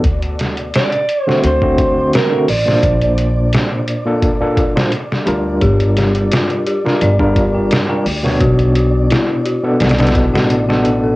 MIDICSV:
0, 0, Header, 1, 7, 480
1, 0, Start_track
1, 0, Tempo, 697674
1, 25, Time_signature, 4, 2, 24, 8
1, 7677, End_track
2, 0, Start_track
2, 0, Title_t, "Synth texture"
2, 0, Program_c, 0, 99
2, 0, Note_on_c, 0, 74, 82
2, 7677, Note_off_c, 0, 74, 0
2, 7677, End_track
3, 0, Start_track
3, 0, Title_t, "Clean electric guitar"
3, 0, Program_c, 1, 27
3, 521, Note_on_c, 1, 74, 110
3, 851, Note_off_c, 1, 74, 0
3, 851, Note_on_c, 1, 72, 110
3, 966, Note_off_c, 1, 72, 0
3, 1002, Note_on_c, 1, 72, 103
3, 1477, Note_off_c, 1, 72, 0
3, 1480, Note_on_c, 1, 70, 84
3, 1716, Note_off_c, 1, 70, 0
3, 1719, Note_on_c, 1, 74, 86
3, 2404, Note_off_c, 1, 74, 0
3, 7677, End_track
4, 0, Start_track
4, 0, Title_t, "Synth bell"
4, 0, Program_c, 2, 98
4, 3866, Note_on_c, 2, 67, 101
4, 3976, Control_c, 2, 64, 127
4, 4094, Note_off_c, 2, 67, 0
4, 4107, Note_on_c, 2, 67, 75
4, 4225, Note_off_c, 2, 67, 0
4, 4346, Note_on_c, 2, 65, 79
4, 4574, Note_off_c, 2, 65, 0
4, 4585, Note_on_c, 2, 67, 79
4, 4705, Note_off_c, 2, 67, 0
4, 4826, Note_on_c, 2, 74, 104
4, 4939, Note_off_c, 2, 74, 0
4, 4950, Note_on_c, 2, 62, 69
4, 5178, Note_off_c, 2, 62, 0
4, 5190, Note_on_c, 2, 79, 72
4, 5299, Note_off_c, 2, 79, 0
4, 5430, Note_on_c, 2, 79, 105
4, 5539, Note_off_c, 2, 79, 0
4, 5672, Note_on_c, 2, 70, 71
4, 5780, Note_off_c, 2, 70, 0
4, 5784, Note_on_c, 2, 66, 98
4, 5793, Control_c, 2, 64, 0
4, 5911, Control_c, 2, 64, 127
4, 6013, Note_off_c, 2, 66, 0
4, 6026, Note_on_c, 2, 66, 78
4, 6145, Note_off_c, 2, 66, 0
4, 6265, Note_on_c, 2, 64, 77
4, 6494, Note_off_c, 2, 64, 0
4, 6506, Note_on_c, 2, 66, 77
4, 6625, Note_off_c, 2, 66, 0
4, 6747, Note_on_c, 2, 74, 104
4, 6859, Note_off_c, 2, 74, 0
4, 6870, Note_on_c, 2, 62, 75
4, 7098, Note_off_c, 2, 62, 0
4, 7111, Note_on_c, 2, 78, 70
4, 7220, Note_off_c, 2, 78, 0
4, 7352, Note_on_c, 2, 78, 103
4, 7460, Note_off_c, 2, 78, 0
4, 7592, Note_on_c, 2, 69, 73
4, 7677, Note_off_c, 2, 69, 0
4, 7677, End_track
5, 0, Start_track
5, 0, Title_t, "Tine electric piano"
5, 0, Program_c, 3, 4
5, 873, Note_on_c, 3, 50, 78
5, 875, Note_on_c, 3, 57, 73
5, 878, Note_on_c, 3, 60, 73
5, 879, Note_on_c, 3, 66, 89
5, 1082, Note_off_c, 3, 50, 0
5, 1083, Note_off_c, 3, 57, 0
5, 1084, Note_off_c, 3, 60, 0
5, 1085, Note_off_c, 3, 66, 0
5, 1108, Note_on_c, 3, 50, 81
5, 1111, Note_on_c, 3, 57, 72
5, 1115, Note_on_c, 3, 60, 73
5, 1117, Note_on_c, 3, 66, 89
5, 1560, Note_off_c, 3, 50, 0
5, 1561, Note_off_c, 3, 57, 0
5, 1563, Note_off_c, 3, 60, 0
5, 1564, Note_off_c, 3, 66, 0
5, 1592, Note_on_c, 3, 50, 72
5, 1595, Note_on_c, 3, 57, 66
5, 1597, Note_on_c, 3, 60, 64
5, 1599, Note_on_c, 3, 66, 80
5, 1694, Note_off_c, 3, 50, 0
5, 1696, Note_off_c, 3, 57, 0
5, 1697, Note_off_c, 3, 60, 0
5, 1698, Note_off_c, 3, 66, 0
5, 1827, Note_on_c, 3, 46, 84
5, 1831, Note_on_c, 3, 58, 74
5, 1836, Note_on_c, 3, 62, 72
5, 1842, Note_on_c, 3, 72, 88
5, 2759, Note_off_c, 3, 46, 0
5, 2761, Note_off_c, 3, 58, 0
5, 2763, Note_off_c, 3, 62, 0
5, 2766, Note_off_c, 3, 72, 0
5, 2790, Note_on_c, 3, 46, 89
5, 2794, Note_on_c, 3, 58, 80
5, 2797, Note_on_c, 3, 62, 85
5, 2800, Note_on_c, 3, 69, 99
5, 3000, Note_off_c, 3, 46, 0
5, 3002, Note_off_c, 3, 58, 0
5, 3004, Note_off_c, 3, 62, 0
5, 3005, Note_off_c, 3, 69, 0
5, 3030, Note_on_c, 3, 46, 95
5, 3032, Note_on_c, 3, 58, 87
5, 3035, Note_on_c, 3, 62, 91
5, 3038, Note_on_c, 3, 69, 101
5, 3245, Note_off_c, 3, 46, 0
5, 3247, Note_off_c, 3, 58, 0
5, 3248, Note_off_c, 3, 62, 0
5, 3249, Note_off_c, 3, 69, 0
5, 3268, Note_on_c, 3, 46, 73
5, 3272, Note_on_c, 3, 58, 66
5, 3275, Note_on_c, 3, 62, 68
5, 3276, Note_on_c, 3, 72, 81
5, 3373, Note_off_c, 3, 46, 0
5, 3374, Note_off_c, 3, 58, 0
5, 3376, Note_off_c, 3, 62, 0
5, 3376, Note_off_c, 3, 72, 0
5, 3619, Note_on_c, 3, 55, 84
5, 3624, Note_on_c, 3, 62, 75
5, 3630, Note_on_c, 3, 65, 73
5, 3634, Note_on_c, 3, 70, 87
5, 4678, Note_off_c, 3, 55, 0
5, 4680, Note_off_c, 3, 62, 0
5, 4683, Note_off_c, 3, 65, 0
5, 4685, Note_off_c, 3, 70, 0
5, 4708, Note_on_c, 3, 55, 80
5, 4711, Note_on_c, 3, 62, 73
5, 4713, Note_on_c, 3, 65, 74
5, 4717, Note_on_c, 3, 70, 89
5, 4919, Note_off_c, 3, 55, 0
5, 4921, Note_off_c, 3, 62, 0
5, 4922, Note_off_c, 3, 65, 0
5, 4924, Note_off_c, 3, 70, 0
5, 4946, Note_on_c, 3, 55, 82
5, 4949, Note_on_c, 3, 62, 70
5, 4952, Note_on_c, 3, 65, 68
5, 4953, Note_on_c, 3, 70, 92
5, 5398, Note_off_c, 3, 55, 0
5, 5400, Note_off_c, 3, 62, 0
5, 5401, Note_off_c, 3, 65, 0
5, 5402, Note_off_c, 3, 70, 0
5, 5428, Note_on_c, 3, 55, 71
5, 5430, Note_on_c, 3, 62, 66
5, 5432, Note_on_c, 3, 65, 64
5, 5435, Note_on_c, 3, 70, 80
5, 5532, Note_off_c, 3, 55, 0
5, 5533, Note_off_c, 3, 62, 0
5, 5534, Note_off_c, 3, 65, 0
5, 5536, Note_off_c, 3, 70, 0
5, 5663, Note_on_c, 3, 47, 75
5, 5668, Note_on_c, 3, 59, 74
5, 5673, Note_on_c, 3, 62, 70
5, 5677, Note_on_c, 3, 73, 86
5, 6597, Note_off_c, 3, 47, 0
5, 6599, Note_off_c, 3, 59, 0
5, 6602, Note_off_c, 3, 62, 0
5, 6604, Note_off_c, 3, 73, 0
5, 6627, Note_on_c, 3, 47, 93
5, 6629, Note_on_c, 3, 59, 91
5, 6633, Note_on_c, 3, 62, 84
5, 6634, Note_on_c, 3, 69, 98
5, 6839, Note_off_c, 3, 47, 0
5, 6840, Note_off_c, 3, 59, 0
5, 6842, Note_off_c, 3, 62, 0
5, 6843, Note_off_c, 3, 69, 0
5, 6869, Note_on_c, 3, 47, 101
5, 6872, Note_on_c, 3, 59, 85
5, 6873, Note_on_c, 3, 62, 92
5, 6876, Note_on_c, 3, 69, 111
5, 7320, Note_off_c, 3, 47, 0
5, 7321, Note_off_c, 3, 59, 0
5, 7322, Note_off_c, 3, 62, 0
5, 7323, Note_off_c, 3, 69, 0
5, 7350, Note_on_c, 3, 47, 93
5, 7352, Note_on_c, 3, 59, 82
5, 7354, Note_on_c, 3, 62, 86
5, 7358, Note_on_c, 3, 69, 108
5, 7677, Note_off_c, 3, 47, 0
5, 7677, Note_off_c, 3, 59, 0
5, 7677, Note_off_c, 3, 62, 0
5, 7677, Note_off_c, 3, 69, 0
5, 7677, End_track
6, 0, Start_track
6, 0, Title_t, "Upright bass"
6, 0, Program_c, 4, 32
6, 29, Note_on_c, 4, 38, 89
6, 485, Note_off_c, 4, 38, 0
6, 990, Note_on_c, 4, 38, 94
6, 1446, Note_off_c, 4, 38, 0
6, 1708, Note_on_c, 4, 33, 85
6, 1919, Note_off_c, 4, 33, 0
6, 1949, Note_on_c, 4, 34, 89
6, 2405, Note_off_c, 4, 34, 0
6, 3626, Note_on_c, 4, 38, 82
6, 3838, Note_off_c, 4, 38, 0
6, 3866, Note_on_c, 4, 31, 93
6, 4324, Note_off_c, 4, 31, 0
6, 4827, Note_on_c, 4, 31, 95
6, 5284, Note_off_c, 4, 31, 0
6, 5544, Note_on_c, 4, 38, 82
6, 5757, Note_off_c, 4, 38, 0
6, 5786, Note_on_c, 4, 35, 93
6, 6244, Note_off_c, 4, 35, 0
6, 6746, Note_on_c, 4, 35, 92
6, 7087, Note_off_c, 4, 35, 0
6, 7112, Note_on_c, 4, 33, 81
6, 7677, Note_off_c, 4, 33, 0
6, 7677, End_track
7, 0, Start_track
7, 0, Title_t, "Drums"
7, 27, Note_on_c, 9, 36, 106
7, 27, Note_on_c, 9, 42, 84
7, 96, Note_off_c, 9, 36, 0
7, 96, Note_off_c, 9, 42, 0
7, 154, Note_on_c, 9, 42, 42
7, 223, Note_off_c, 9, 42, 0
7, 270, Note_on_c, 9, 42, 61
7, 281, Note_on_c, 9, 38, 47
7, 338, Note_off_c, 9, 42, 0
7, 350, Note_off_c, 9, 38, 0
7, 393, Note_on_c, 9, 42, 44
7, 462, Note_off_c, 9, 42, 0
7, 508, Note_on_c, 9, 42, 85
7, 520, Note_on_c, 9, 38, 114
7, 577, Note_off_c, 9, 42, 0
7, 589, Note_off_c, 9, 38, 0
7, 636, Note_on_c, 9, 42, 43
7, 704, Note_off_c, 9, 42, 0
7, 749, Note_on_c, 9, 42, 70
7, 817, Note_off_c, 9, 42, 0
7, 887, Note_on_c, 9, 38, 39
7, 955, Note_off_c, 9, 38, 0
7, 988, Note_on_c, 9, 42, 83
7, 1057, Note_off_c, 9, 42, 0
7, 1114, Note_on_c, 9, 36, 95
7, 1183, Note_off_c, 9, 36, 0
7, 1227, Note_on_c, 9, 42, 70
7, 1228, Note_on_c, 9, 36, 93
7, 1296, Note_off_c, 9, 36, 0
7, 1296, Note_off_c, 9, 42, 0
7, 1468, Note_on_c, 9, 42, 84
7, 1480, Note_on_c, 9, 38, 121
7, 1537, Note_off_c, 9, 42, 0
7, 1549, Note_off_c, 9, 38, 0
7, 1709, Note_on_c, 9, 46, 76
7, 1778, Note_off_c, 9, 46, 0
7, 1845, Note_on_c, 9, 38, 42
7, 1914, Note_off_c, 9, 38, 0
7, 1947, Note_on_c, 9, 36, 102
7, 1949, Note_on_c, 9, 42, 85
7, 2016, Note_off_c, 9, 36, 0
7, 2018, Note_off_c, 9, 42, 0
7, 2075, Note_on_c, 9, 42, 44
7, 2143, Note_off_c, 9, 42, 0
7, 2187, Note_on_c, 9, 42, 67
7, 2256, Note_off_c, 9, 42, 0
7, 2427, Note_on_c, 9, 42, 83
7, 2439, Note_on_c, 9, 38, 107
7, 2496, Note_off_c, 9, 42, 0
7, 2508, Note_off_c, 9, 38, 0
7, 2667, Note_on_c, 9, 42, 70
7, 2736, Note_off_c, 9, 42, 0
7, 2906, Note_on_c, 9, 36, 114
7, 2906, Note_on_c, 9, 42, 85
7, 2975, Note_off_c, 9, 36, 0
7, 2975, Note_off_c, 9, 42, 0
7, 3145, Note_on_c, 9, 36, 93
7, 3146, Note_on_c, 9, 42, 66
7, 3214, Note_off_c, 9, 36, 0
7, 3215, Note_off_c, 9, 42, 0
7, 3282, Note_on_c, 9, 38, 116
7, 3351, Note_off_c, 9, 38, 0
7, 3385, Note_on_c, 9, 42, 83
7, 3453, Note_off_c, 9, 42, 0
7, 3524, Note_on_c, 9, 38, 54
7, 3593, Note_off_c, 9, 38, 0
7, 3625, Note_on_c, 9, 42, 65
7, 3694, Note_off_c, 9, 42, 0
7, 3862, Note_on_c, 9, 42, 80
7, 3864, Note_on_c, 9, 36, 108
7, 3931, Note_off_c, 9, 42, 0
7, 3933, Note_off_c, 9, 36, 0
7, 3991, Note_on_c, 9, 42, 43
7, 4060, Note_off_c, 9, 42, 0
7, 4105, Note_on_c, 9, 42, 71
7, 4117, Note_on_c, 9, 38, 46
7, 4174, Note_off_c, 9, 42, 0
7, 4186, Note_off_c, 9, 38, 0
7, 4231, Note_on_c, 9, 42, 46
7, 4299, Note_off_c, 9, 42, 0
7, 4345, Note_on_c, 9, 42, 85
7, 4357, Note_on_c, 9, 38, 115
7, 4414, Note_off_c, 9, 42, 0
7, 4426, Note_off_c, 9, 38, 0
7, 4473, Note_on_c, 9, 42, 42
7, 4541, Note_off_c, 9, 42, 0
7, 4586, Note_on_c, 9, 42, 68
7, 4655, Note_off_c, 9, 42, 0
7, 4723, Note_on_c, 9, 38, 39
7, 4792, Note_off_c, 9, 38, 0
7, 4825, Note_on_c, 9, 42, 84
7, 4894, Note_off_c, 9, 42, 0
7, 4950, Note_on_c, 9, 36, 87
7, 5019, Note_off_c, 9, 36, 0
7, 5064, Note_on_c, 9, 36, 95
7, 5064, Note_on_c, 9, 42, 68
7, 5133, Note_off_c, 9, 36, 0
7, 5133, Note_off_c, 9, 42, 0
7, 5304, Note_on_c, 9, 42, 86
7, 5316, Note_on_c, 9, 38, 121
7, 5373, Note_off_c, 9, 42, 0
7, 5384, Note_off_c, 9, 38, 0
7, 5546, Note_on_c, 9, 46, 71
7, 5615, Note_off_c, 9, 46, 0
7, 5682, Note_on_c, 9, 38, 43
7, 5751, Note_off_c, 9, 38, 0
7, 5784, Note_on_c, 9, 42, 82
7, 5785, Note_on_c, 9, 36, 111
7, 5853, Note_off_c, 9, 36, 0
7, 5853, Note_off_c, 9, 42, 0
7, 5910, Note_on_c, 9, 42, 44
7, 5979, Note_off_c, 9, 42, 0
7, 6024, Note_on_c, 9, 42, 64
7, 6093, Note_off_c, 9, 42, 0
7, 6264, Note_on_c, 9, 42, 83
7, 6276, Note_on_c, 9, 38, 105
7, 6333, Note_off_c, 9, 42, 0
7, 6345, Note_off_c, 9, 38, 0
7, 6505, Note_on_c, 9, 42, 66
7, 6574, Note_off_c, 9, 42, 0
7, 6744, Note_on_c, 9, 42, 68
7, 6756, Note_on_c, 9, 38, 82
7, 6807, Note_off_c, 9, 42, 0
7, 6807, Note_on_c, 9, 42, 65
7, 6819, Note_off_c, 9, 38, 0
7, 6819, Note_on_c, 9, 38, 90
7, 6870, Note_off_c, 9, 42, 0
7, 6870, Note_on_c, 9, 42, 64
7, 6881, Note_off_c, 9, 38, 0
7, 6881, Note_on_c, 9, 38, 87
7, 6927, Note_off_c, 9, 42, 0
7, 6927, Note_on_c, 9, 42, 66
7, 6939, Note_off_c, 9, 38, 0
7, 6939, Note_on_c, 9, 38, 83
7, 6984, Note_off_c, 9, 42, 0
7, 6984, Note_on_c, 9, 42, 74
7, 6985, Note_on_c, 9, 36, 93
7, 7008, Note_off_c, 9, 38, 0
7, 7053, Note_off_c, 9, 42, 0
7, 7054, Note_off_c, 9, 36, 0
7, 7124, Note_on_c, 9, 38, 123
7, 7193, Note_off_c, 9, 38, 0
7, 7225, Note_on_c, 9, 42, 86
7, 7294, Note_off_c, 9, 42, 0
7, 7362, Note_on_c, 9, 38, 54
7, 7431, Note_off_c, 9, 38, 0
7, 7464, Note_on_c, 9, 42, 67
7, 7533, Note_off_c, 9, 42, 0
7, 7677, End_track
0, 0, End_of_file